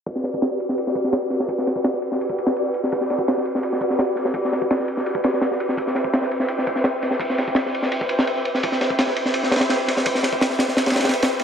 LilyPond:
<<
  \new Staff \with { instrumentName = "String machine" } { \time 4/4 \key g \major \tempo 4 = 168 <fis' g' b' d''>4. <fis' g' b' d''>2~ <fis' g' b' d''>8 | <fis' g' b' d''>4. <fis' g' b' d''>2~ <fis' g' b' d''>8 | <fis' g' b' d''>4. <fis' g' b' d''>2~ <fis' g' b' d''>8 | <fis' g' b' d''>4. <fis' g' b' d''>2~ <fis' g' b' d''>8 |
<b' c'' e'' g''>4. <b' c'' e'' g''>2~ <b' c'' e'' g''>8 | <b' c'' e'' g''>4. <b' c'' e'' g''>2~ <b' c'' e'' g''>8 | <b' c'' e'' g''>4. <b' c'' e'' g''>2~ <b' c'' e'' g''>8 | <b' c'' e'' g''>4. <b' c'' e'' g''>2~ <b' c'' e'' g''>8 | }
  \new DrumStaff \with { instrumentName = "Drums" } \drummode { \time 4/4 <bd cymr>16 sn16 <cymr sn>16 bd16 <cymr sn>16 sn16 cymr16 sn16 cymr16 sn16 <bd cymr>16 sn16 <cymr sn>8 <cymr sn>16 sn16 | <bd cymr>16 sn16 <cymr sn>16 bd16 <cymr sn>16 sn16 cymr16 sn16 cymr16 bd16 cymr16 sn16 cymr8 cymr16 sn16 | <bd cymr>16 sn16 <cymr sn>16 bd16 <cymr sn>16 sn16 cymr16 sn16 cymr16 sn16 <bd cymr>16 sn16 <cymr sn>8 <cymr sn>16 sn16 | <bd cymr>16 sn16 <cymr sn>16 bd16 <cymr sn>16 sn16 cymr16 sn16 cymr16 bd16 <cymr sn>16 sn16 <cymr sn>16 sn16 cymr16 sn16 |
<bd cymr>16 sn16 <cymr sn>16 bd16 <cymr sn>16 sn16 cymr16 sn16 cymr16 sn16 <bd cymr>16 sn16 <cymr sn>8 <cymr sn>16 sn16 | <bd cymr>16 sn16 <cymr sn>16 bd16 <cymr sn>16 sn16 cymr16 sn16 cymr16 bd16 cymr16 sn16 cymr8 cymr16 sn16 | <bd cymr>16 sn16 <cymr sn>16 bd16 <cymr sn>16 sn16 cymr16 sn16 cymr16 sn16 <cymr sn>32 <cymr sn>32 <cymr sn>16 <cymr sn>8 <cymr sn>16 sn16 | <bd cymr>16 sn16 <cymr sn>16 bd16 <cymr sn>16 sn16 <cymr sn>16 sn16 <cymr sn>16 <cymr sn>32 <cymr sn>32 <cymr sn>32 <cymr sn>32 <cymr sn>32 <cymr sn>32 <cymr sn>16 <cymr sn>8 <cymr sn>16 | }
>>